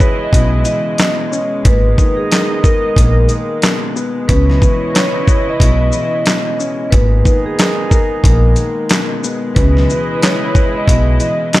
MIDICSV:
0, 0, Header, 1, 7, 480
1, 0, Start_track
1, 0, Tempo, 659341
1, 1201, Time_signature, 4, 2, 24, 8
1, 8445, End_track
2, 0, Start_track
2, 0, Title_t, "Vibraphone"
2, 0, Program_c, 0, 11
2, 0, Note_on_c, 0, 73, 83
2, 128, Note_off_c, 0, 73, 0
2, 164, Note_on_c, 0, 75, 82
2, 470, Note_off_c, 0, 75, 0
2, 483, Note_on_c, 0, 75, 90
2, 1173, Note_off_c, 0, 75, 0
2, 1198, Note_on_c, 0, 71, 109
2, 1562, Note_off_c, 0, 71, 0
2, 1579, Note_on_c, 0, 68, 83
2, 1897, Note_off_c, 0, 68, 0
2, 1923, Note_on_c, 0, 70, 88
2, 2759, Note_off_c, 0, 70, 0
2, 3116, Note_on_c, 0, 71, 112
2, 3570, Note_off_c, 0, 71, 0
2, 3603, Note_on_c, 0, 73, 84
2, 3965, Note_off_c, 0, 73, 0
2, 3997, Note_on_c, 0, 75, 89
2, 4306, Note_off_c, 0, 75, 0
2, 4328, Note_on_c, 0, 75, 85
2, 5016, Note_off_c, 0, 75, 0
2, 5028, Note_on_c, 0, 71, 102
2, 5397, Note_off_c, 0, 71, 0
2, 5431, Note_on_c, 0, 68, 86
2, 5743, Note_off_c, 0, 68, 0
2, 5779, Note_on_c, 0, 70, 85
2, 6607, Note_off_c, 0, 70, 0
2, 6952, Note_on_c, 0, 71, 101
2, 7408, Note_off_c, 0, 71, 0
2, 7450, Note_on_c, 0, 73, 83
2, 7809, Note_off_c, 0, 73, 0
2, 7844, Note_on_c, 0, 75, 82
2, 8150, Note_off_c, 0, 75, 0
2, 8161, Note_on_c, 0, 75, 90
2, 8445, Note_off_c, 0, 75, 0
2, 8445, End_track
3, 0, Start_track
3, 0, Title_t, "Horn section"
3, 0, Program_c, 1, 61
3, 0, Note_on_c, 1, 64, 88
3, 0, Note_on_c, 1, 68, 93
3, 0, Note_on_c, 1, 71, 98
3, 932, Note_off_c, 1, 64, 0
3, 932, Note_off_c, 1, 68, 0
3, 932, Note_off_c, 1, 71, 0
3, 1200, Note_on_c, 1, 63, 96
3, 1200, Note_on_c, 1, 75, 97
3, 1201, Note_on_c, 1, 59, 86
3, 2852, Note_off_c, 1, 59, 0
3, 2852, Note_off_c, 1, 63, 0
3, 2852, Note_off_c, 1, 75, 0
3, 3120, Note_on_c, 1, 64, 90
3, 3120, Note_on_c, 1, 71, 90
3, 3120, Note_on_c, 1, 73, 88
3, 4771, Note_off_c, 1, 64, 0
3, 4771, Note_off_c, 1, 71, 0
3, 4772, Note_off_c, 1, 73, 0
3, 5042, Note_on_c, 1, 59, 90
3, 5042, Note_on_c, 1, 63, 92
3, 5042, Note_on_c, 1, 68, 98
3, 6692, Note_off_c, 1, 59, 0
3, 6692, Note_off_c, 1, 68, 0
3, 6693, Note_off_c, 1, 63, 0
3, 6961, Note_on_c, 1, 64, 84
3, 6961, Note_on_c, 1, 68, 91
3, 6961, Note_on_c, 1, 71, 98
3, 8445, Note_off_c, 1, 64, 0
3, 8445, Note_off_c, 1, 68, 0
3, 8445, Note_off_c, 1, 71, 0
3, 8445, End_track
4, 0, Start_track
4, 0, Title_t, "String section"
4, 0, Program_c, 2, 48
4, 0, Note_on_c, 2, 49, 80
4, 0, Note_on_c, 2, 56, 81
4, 0, Note_on_c, 2, 64, 90
4, 0, Note_on_c, 2, 75, 77
4, 1181, Note_off_c, 2, 49, 0
4, 1181, Note_off_c, 2, 64, 0
4, 1181, Note_off_c, 2, 75, 0
4, 3132, Note_on_c, 2, 64, 87
4, 3132, Note_on_c, 2, 75, 77
4, 3133, Note_on_c, 2, 49, 83
4, 5019, Note_off_c, 2, 56, 0
4, 5028, Note_off_c, 2, 49, 0
4, 5028, Note_off_c, 2, 64, 0
4, 5028, Note_off_c, 2, 75, 0
4, 5055, Note_on_c, 2, 56, 80
4, 6958, Note_on_c, 2, 49, 80
4, 6959, Note_on_c, 2, 64, 92
4, 6959, Note_on_c, 2, 75, 78
4, 8445, Note_off_c, 2, 49, 0
4, 8445, Note_off_c, 2, 56, 0
4, 8445, Note_off_c, 2, 64, 0
4, 8445, Note_off_c, 2, 75, 0
4, 8445, End_track
5, 0, Start_track
5, 0, Title_t, "Grand piano"
5, 0, Program_c, 3, 0
5, 0, Control_c, 3, 64, 127
5, 0, Note_on_c, 3, 47, 98
5, 0, Note_on_c, 3, 52, 77
5, 0, Note_on_c, 3, 71, 94
5, 4, Note_off_c, 3, 71, 0
5, 4, Note_on_c, 3, 71, 90
5, 227, Note_off_c, 3, 47, 0
5, 238, Note_on_c, 3, 47, 91
5, 468, Note_off_c, 3, 52, 0
5, 479, Note_on_c, 3, 52, 86
5, 703, Note_off_c, 3, 47, 0
5, 714, Note_on_c, 3, 47, 86
5, 957, Note_on_c, 3, 61, 91
5, 1198, Note_off_c, 3, 47, 0
5, 1199, Note_off_c, 3, 61, 0
5, 1200, Note_off_c, 3, 52, 0
5, 1203, Note_off_c, 3, 71, 0
5, 1204, Note_on_c, 3, 46, 94
5, 1209, Control_c, 3, 64, 0
5, 1358, Control_c, 3, 64, 127
5, 1435, Note_on_c, 3, 51, 80
5, 1680, Note_on_c, 3, 70, 88
5, 1899, Note_off_c, 3, 70, 0
5, 1910, Note_on_c, 3, 70, 91
5, 2167, Note_on_c, 3, 58, 87
5, 2384, Note_off_c, 3, 51, 0
5, 2395, Note_on_c, 3, 51, 77
5, 2403, Note_off_c, 3, 46, 0
5, 2639, Note_on_c, 3, 47, 89
5, 2883, Note_on_c, 3, 59, 90
5, 3110, Note_off_c, 3, 47, 0
5, 3116, Note_off_c, 3, 70, 0
5, 3118, Note_off_c, 3, 51, 0
5, 3121, Note_on_c, 3, 47, 98
5, 3122, Note_off_c, 3, 59, 0
5, 3124, Note_off_c, 3, 58, 0
5, 3129, Control_c, 3, 64, 0
5, 3276, Control_c, 3, 64, 127
5, 3364, Note_on_c, 3, 52, 77
5, 3598, Note_on_c, 3, 71, 90
5, 3833, Note_off_c, 3, 71, 0
5, 3844, Note_on_c, 3, 71, 91
5, 4065, Note_off_c, 3, 47, 0
5, 4076, Note_on_c, 3, 47, 94
5, 4306, Note_off_c, 3, 52, 0
5, 4317, Note_on_c, 3, 52, 82
5, 4544, Note_off_c, 3, 47, 0
5, 4555, Note_on_c, 3, 47, 83
5, 4798, Note_on_c, 3, 61, 91
5, 5038, Note_off_c, 3, 47, 0
5, 5039, Note_off_c, 3, 52, 0
5, 5040, Note_off_c, 3, 61, 0
5, 5043, Note_off_c, 3, 71, 0
5, 5044, Note_on_c, 3, 46, 93
5, 5050, Control_c, 3, 64, 0
5, 5198, Control_c, 3, 64, 127
5, 5277, Note_on_c, 3, 51, 76
5, 5521, Note_on_c, 3, 70, 87
5, 5740, Note_off_c, 3, 70, 0
5, 5751, Note_on_c, 3, 70, 89
5, 6008, Note_on_c, 3, 58, 84
5, 6226, Note_off_c, 3, 51, 0
5, 6237, Note_on_c, 3, 51, 78
5, 6243, Note_off_c, 3, 46, 0
5, 6478, Note_on_c, 3, 47, 86
5, 6722, Note_on_c, 3, 59, 85
5, 6948, Note_off_c, 3, 47, 0
5, 6956, Note_off_c, 3, 70, 0
5, 6959, Note_off_c, 3, 51, 0
5, 6959, Note_on_c, 3, 47, 93
5, 6962, Note_off_c, 3, 59, 0
5, 6965, Note_off_c, 3, 58, 0
5, 6970, Control_c, 3, 64, 0
5, 7084, Control_c, 3, 64, 127
5, 7203, Note_on_c, 3, 52, 78
5, 7438, Note_on_c, 3, 71, 92
5, 7673, Note_off_c, 3, 71, 0
5, 7684, Note_on_c, 3, 71, 93
5, 7906, Note_off_c, 3, 47, 0
5, 7916, Note_on_c, 3, 47, 90
5, 8146, Note_off_c, 3, 52, 0
5, 8157, Note_on_c, 3, 52, 84
5, 8381, Note_off_c, 3, 47, 0
5, 8392, Note_on_c, 3, 47, 89
5, 8445, Note_off_c, 3, 47, 0
5, 8445, Note_off_c, 3, 52, 0
5, 8445, Note_off_c, 3, 71, 0
5, 8445, End_track
6, 0, Start_track
6, 0, Title_t, "Upright bass"
6, 0, Program_c, 4, 32
6, 239, Note_on_c, 4, 35, 96
6, 444, Note_off_c, 4, 35, 0
6, 1204, Note_on_c, 4, 32, 99
6, 1407, Note_off_c, 4, 32, 0
6, 2159, Note_on_c, 4, 34, 102
6, 2364, Note_off_c, 4, 34, 0
6, 3124, Note_on_c, 4, 37, 111
6, 3327, Note_off_c, 4, 37, 0
6, 4078, Note_on_c, 4, 35, 100
6, 4284, Note_off_c, 4, 35, 0
6, 5043, Note_on_c, 4, 32, 103
6, 5246, Note_off_c, 4, 32, 0
6, 5998, Note_on_c, 4, 34, 102
6, 6203, Note_off_c, 4, 34, 0
6, 6963, Note_on_c, 4, 37, 105
6, 7166, Note_off_c, 4, 37, 0
6, 7918, Note_on_c, 4, 35, 100
6, 8124, Note_off_c, 4, 35, 0
6, 8445, End_track
7, 0, Start_track
7, 0, Title_t, "Drums"
7, 1, Note_on_c, 9, 36, 103
7, 5, Note_on_c, 9, 82, 47
7, 74, Note_off_c, 9, 36, 0
7, 78, Note_off_c, 9, 82, 0
7, 238, Note_on_c, 9, 36, 94
7, 248, Note_on_c, 9, 42, 96
7, 311, Note_off_c, 9, 36, 0
7, 321, Note_off_c, 9, 42, 0
7, 473, Note_on_c, 9, 42, 47
7, 473, Note_on_c, 9, 82, 49
7, 546, Note_off_c, 9, 42, 0
7, 546, Note_off_c, 9, 82, 0
7, 716, Note_on_c, 9, 42, 79
7, 725, Note_on_c, 9, 38, 123
7, 732, Note_on_c, 9, 39, 97
7, 789, Note_off_c, 9, 42, 0
7, 798, Note_off_c, 9, 38, 0
7, 805, Note_off_c, 9, 39, 0
7, 967, Note_on_c, 9, 82, 54
7, 1040, Note_off_c, 9, 82, 0
7, 1202, Note_on_c, 9, 42, 98
7, 1203, Note_on_c, 9, 36, 116
7, 1274, Note_off_c, 9, 42, 0
7, 1276, Note_off_c, 9, 36, 0
7, 1442, Note_on_c, 9, 36, 93
7, 1447, Note_on_c, 9, 82, 47
7, 1515, Note_off_c, 9, 36, 0
7, 1520, Note_off_c, 9, 82, 0
7, 1685, Note_on_c, 9, 42, 86
7, 1692, Note_on_c, 9, 38, 108
7, 1699, Note_on_c, 9, 39, 90
7, 1758, Note_off_c, 9, 42, 0
7, 1764, Note_off_c, 9, 38, 0
7, 1772, Note_off_c, 9, 39, 0
7, 1921, Note_on_c, 9, 36, 104
7, 1925, Note_on_c, 9, 82, 48
7, 1994, Note_off_c, 9, 36, 0
7, 1997, Note_off_c, 9, 82, 0
7, 2158, Note_on_c, 9, 36, 92
7, 2168, Note_on_c, 9, 42, 100
7, 2231, Note_off_c, 9, 36, 0
7, 2241, Note_off_c, 9, 42, 0
7, 2394, Note_on_c, 9, 42, 48
7, 2394, Note_on_c, 9, 82, 48
7, 2467, Note_off_c, 9, 42, 0
7, 2467, Note_off_c, 9, 82, 0
7, 2637, Note_on_c, 9, 42, 80
7, 2646, Note_on_c, 9, 38, 123
7, 2653, Note_on_c, 9, 39, 96
7, 2710, Note_off_c, 9, 42, 0
7, 2719, Note_off_c, 9, 38, 0
7, 2726, Note_off_c, 9, 39, 0
7, 2887, Note_on_c, 9, 82, 52
7, 2960, Note_off_c, 9, 82, 0
7, 3122, Note_on_c, 9, 42, 94
7, 3123, Note_on_c, 9, 36, 122
7, 3195, Note_off_c, 9, 36, 0
7, 3195, Note_off_c, 9, 42, 0
7, 3273, Note_on_c, 9, 38, 35
7, 3346, Note_off_c, 9, 38, 0
7, 3362, Note_on_c, 9, 36, 94
7, 3367, Note_on_c, 9, 82, 48
7, 3435, Note_off_c, 9, 36, 0
7, 3440, Note_off_c, 9, 82, 0
7, 3604, Note_on_c, 9, 42, 84
7, 3611, Note_on_c, 9, 38, 108
7, 3618, Note_on_c, 9, 39, 92
7, 3677, Note_off_c, 9, 42, 0
7, 3684, Note_off_c, 9, 38, 0
7, 3691, Note_off_c, 9, 39, 0
7, 3840, Note_on_c, 9, 36, 101
7, 3844, Note_on_c, 9, 82, 49
7, 3913, Note_off_c, 9, 36, 0
7, 3917, Note_off_c, 9, 82, 0
7, 4077, Note_on_c, 9, 36, 93
7, 4087, Note_on_c, 9, 42, 100
7, 4150, Note_off_c, 9, 36, 0
7, 4160, Note_off_c, 9, 42, 0
7, 4313, Note_on_c, 9, 82, 48
7, 4385, Note_off_c, 9, 82, 0
7, 4555, Note_on_c, 9, 42, 77
7, 4564, Note_on_c, 9, 38, 121
7, 4571, Note_on_c, 9, 39, 99
7, 4627, Note_off_c, 9, 42, 0
7, 4636, Note_off_c, 9, 38, 0
7, 4644, Note_off_c, 9, 39, 0
7, 4806, Note_on_c, 9, 82, 54
7, 4879, Note_off_c, 9, 82, 0
7, 5040, Note_on_c, 9, 42, 95
7, 5041, Note_on_c, 9, 36, 120
7, 5113, Note_off_c, 9, 42, 0
7, 5114, Note_off_c, 9, 36, 0
7, 5281, Note_on_c, 9, 36, 95
7, 5285, Note_on_c, 9, 82, 48
7, 5354, Note_off_c, 9, 36, 0
7, 5358, Note_off_c, 9, 82, 0
7, 5523, Note_on_c, 9, 42, 84
7, 5530, Note_on_c, 9, 38, 110
7, 5537, Note_on_c, 9, 39, 92
7, 5596, Note_off_c, 9, 42, 0
7, 5602, Note_off_c, 9, 38, 0
7, 5610, Note_off_c, 9, 39, 0
7, 5760, Note_on_c, 9, 36, 104
7, 5763, Note_on_c, 9, 82, 47
7, 5833, Note_off_c, 9, 36, 0
7, 5836, Note_off_c, 9, 82, 0
7, 5997, Note_on_c, 9, 36, 93
7, 6006, Note_on_c, 9, 42, 95
7, 6069, Note_off_c, 9, 36, 0
7, 6079, Note_off_c, 9, 42, 0
7, 6232, Note_on_c, 9, 42, 48
7, 6232, Note_on_c, 9, 82, 48
7, 6305, Note_off_c, 9, 42, 0
7, 6305, Note_off_c, 9, 82, 0
7, 6475, Note_on_c, 9, 42, 77
7, 6484, Note_on_c, 9, 38, 125
7, 6492, Note_on_c, 9, 39, 100
7, 6548, Note_off_c, 9, 42, 0
7, 6557, Note_off_c, 9, 38, 0
7, 6564, Note_off_c, 9, 39, 0
7, 6726, Note_on_c, 9, 82, 56
7, 6799, Note_off_c, 9, 82, 0
7, 6961, Note_on_c, 9, 42, 93
7, 6962, Note_on_c, 9, 36, 124
7, 7034, Note_off_c, 9, 42, 0
7, 7035, Note_off_c, 9, 36, 0
7, 7112, Note_on_c, 9, 38, 36
7, 7185, Note_off_c, 9, 38, 0
7, 7206, Note_on_c, 9, 82, 48
7, 7279, Note_off_c, 9, 82, 0
7, 7444, Note_on_c, 9, 42, 82
7, 7450, Note_on_c, 9, 38, 110
7, 7458, Note_on_c, 9, 39, 91
7, 7517, Note_off_c, 9, 42, 0
7, 7523, Note_off_c, 9, 38, 0
7, 7530, Note_off_c, 9, 39, 0
7, 7680, Note_on_c, 9, 36, 101
7, 7684, Note_on_c, 9, 82, 49
7, 7753, Note_off_c, 9, 36, 0
7, 7757, Note_off_c, 9, 82, 0
7, 7917, Note_on_c, 9, 36, 91
7, 7927, Note_on_c, 9, 42, 99
7, 7990, Note_off_c, 9, 36, 0
7, 8000, Note_off_c, 9, 42, 0
7, 8154, Note_on_c, 9, 42, 50
7, 8154, Note_on_c, 9, 82, 48
7, 8227, Note_off_c, 9, 42, 0
7, 8227, Note_off_c, 9, 82, 0
7, 8395, Note_on_c, 9, 42, 78
7, 8404, Note_on_c, 9, 38, 119
7, 8412, Note_on_c, 9, 39, 98
7, 8445, Note_off_c, 9, 38, 0
7, 8445, Note_off_c, 9, 39, 0
7, 8445, Note_off_c, 9, 42, 0
7, 8445, End_track
0, 0, End_of_file